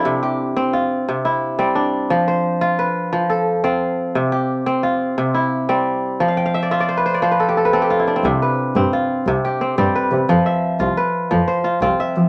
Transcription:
X:1
M:12/8
L:1/16
Q:3/8=117
K:C
V:1 name="Kora"
E z G6 F6 E4 C2 D4- | D2 c6 B6 A4 F6 | z2 G6 F6 E4 C6 | z f g f e d e d c B c d c B A G A B A G F E D C- |
C z B6 F6 G2 C2 C2 B4- | B2 e6 B6 c2 F2 F2 e4 |]
V:2 name="Kora" clef=bass
C,4 z2 C4 z2 C,4 z2 G,4 z2 | F,4 z2 F4 z2 F,4 z2 C4 z2 | C,4 z2 C4 z2 C,4 z2 G,4 z2 | F,4 z2 F4 z2 F,4 z2 C4 z2 |
C,4 z2 C4 z2 C,4 z2 G,4 z2 | F,4 z2 F4 z2 F,4 z2 C4 z2 |]
V:3 name="Double bass" clef=bass
z24 | z24 | z24 | z24 |
C,,2 z4 G,,6 C,,6 G,,2 z2 C,2 | F,,2 z4 C,,6 F,,6 C,,2 z2 F,2 |]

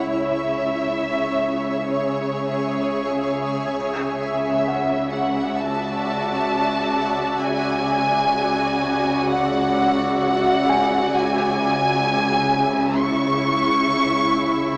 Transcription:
X:1
M:4/4
L:1/8
Q:1/4=65
K:C#phr
V:1 name="Felt piano"
g z6 z | z2 f6 | z6 z g- | g4- g z3 |]
V:2 name="Violin section"
e4 c3 z | z e2 f a4 | g4 f2 f2 | g4 c'4 |]
V:3 name="Ambient pad"
[Gce]8 | [Fde]8 | [Fde]8 | [Ee]8 |]
V:4 name="Cello section" clef=bass
C,8 | C,8 | C,8 | C,8 |]
V:5 name="Double bass section" clef=bass
C,,8 | C,,8 | C,,8 | C,,8 |]
V:6 name="Sub bass" clef=bass
C,,8 | C,,8 | C,,8 | C,,8 |]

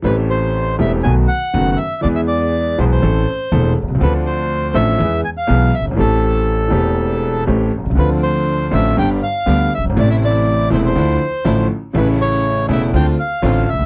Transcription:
X:1
M:4/4
L:1/16
Q:1/4=121
K:Am
V:1 name="Bandoneon"
B2 c4 e2 ^g2 ^f3- f/2 f/2 e2 | d e d4 c c6- c z2 | B2 c4 e4 ^g f3 e2 | A12 z4 |
B2 c4 e2 g2 f4 e2 | d e d4 c c6- c z2 | B2 ^c4 e2 g2 f4 e2 |]
V:2 name="String section"
z16 | z16 | z16 | z16 |
[F,CD]6 [F,CD]2 [G,B,D]2 z2 [G,B,D]2 z2 | [A,CE]6 [A,CE]2 [F,DE]2 z2 [F,DE]2 z2 | [A,^CE]6 [A,CE]2 [=CDF]2 z2 [CDF]2 z2 |]
V:3 name="Grand piano" clef=bass
[A,,,A,,E,A,CG]6 [E,,,E,,E,A,CG]2 [B,,,B,,^D,A,B,^F]2 z2 [^F,,,^F,,D,A,B,F]2 z2 | [E,,E,^G,B,^G]6 [B,,,B,,E,G,B,G]2 [A,,,A,,E,A,CA]2 z2 [E,,,E,,E,A,CA]2 z/2 B,,,/2 C,,/2 ^C,,/2 | [D,,D,F,CDA]6 [A,,,A,,F,CDA]2 [E,,E,^G,B,^G]2 z2 [B,,,B,,E,G,B,G]2 z/2 ^F,,,/2 =G,,,/2 ^G,,,/2 | [A,,,A,,E,A,CG]6 [E,,,E,,E,A,CG]6 [A,,,A,,E,A,CG]2 z/2 B,,,/2 C,,/2 ^C,,/2 |
[D,,D,A,CF]6 [A,,,A,,D,A,CF]2 [G,,,G,,D,G,B,G]2 z2 [D,,D,G,B,G]2 z/2 ^F,,,/2 G,,,/2 ^G,,,/2 | [A,,,A,,C,E,A,E]6 [E,,,E,,C,E,A,E]2 [D,,D,F,A,E]2 z2 [A,,,A,,D,F,A,E]2 z2 | [A,,,A,,^C,E,A,E]6 [E,,,E,,C,E,A,E]2 [D,,D,A,=CF]2 z2 [A,,,A,,D,A,CF]2 z/2 ^C,,/2 D,,/2 z/2 |]
V:4 name="Upright bass" clef=bass
A,,,4- A,,,3/2 z/2 E,,,3/2 z/2 B,,,3/2 z2 z/2 ^F,,,3/2 z2 z/2 | E,,4- E,,3/2 z/2 B,,,3/2 z/2 A,,,3/2 z2 z/2 E,,,3/2 z B,,,/2 C,,/2 ^C,,/2 | D,,4- D,,3/2 z/2 A,,,3/2 z/2 E,,3/2 z2 z/2 B,,,3/2 z ^F,,,/2 G,,,/2 ^G,,,/2 | A,,,4- A,,,3/2 z/2 E,,,4- E,,,3/2 z/2 A,,,3/2 z B,,,/2 C,,/2 ^C,,/2 |
D,,4- D,,3/2 z/2 A,,,3/2 z/2 G,,,3/2 z2 z/2 D,,3/2 z ^F,,,/2 G,,,/2 ^G,,,/2 | A,,,4- A,,,3/2 z/2 E,,,3/2 z/2 D,,3/2 z2 z/2 A,,,3/2 z2 z/2 | A,,,4- A,,,3/2 z/2 E,,,3/2 z/2 D,,3/2 z2 z/2 A,,,3/2 z ^C,,/2 D,,/2 z/2 |]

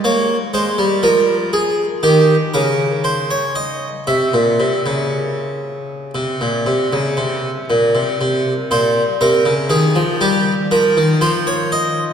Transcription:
X:1
M:4/4
L:1/16
Q:1/4=60
K:Fm
V:1 name="Harpsichord"
d2 c2 B2 A2 G2 B2 c d e2 | =e12- e2 z2 | z2 c2 B2 A2 G2 B2 c d e2 |]
V:2 name="Harpsichord" clef=bass
B,2 A, G, F,4 E,2 D,6 | C, B,, C, D,4- D, C, B,, C, D, C,2 B,, C, | C,2 B,,2 C, D, E, F, G,2 F, E, F,4 |]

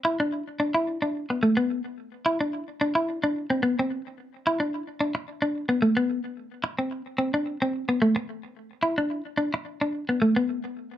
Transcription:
X:1
M:4/4
L:1/16
Q:"Swing 16ths" 1/4=109
K:Ador
V:1 name="Clean electric guitar"
E D2 z D E2 D2 B, A, B,2 z3 | E D2 z D E2 D2 C B, C2 z3 | E D2 z D z2 D2 B, A, B,2 z3 | z C2 z C D2 C2 B, A, z4 z |
E D2 z D z2 D2 B, A, B,2 z3 |]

